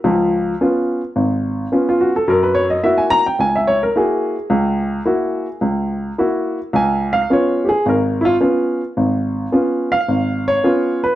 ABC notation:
X:1
M:4/4
L:1/16
Q:"Swing" 1/4=108
K:Dbmix
V:1 name="Upright piano"
z12 z F G =A | B c d e _f a b =g a f d B A4- | A8 z8 | a2 f2 d2 [=GA]2 B2 [_F=F]2 z4 |
z6 f4 d4 c2 |]
V:2 name="Upright piano"
[D,,F,]4 [CDF]2 z2 A,,,4 [CDF]2 z2 | G,,4 [B,_FG]2 z2 D,,4 [B,FG]2 z2 | D,,4 [B,_FG]2 z2 D,,4 [B,FG]2 z2 | D,,4 [CDF]2 z2 A,,,4 [CDF]2 z2 |
A,,,4 [CDF]2 z2 A,,,4 [CDF]2 z2 |]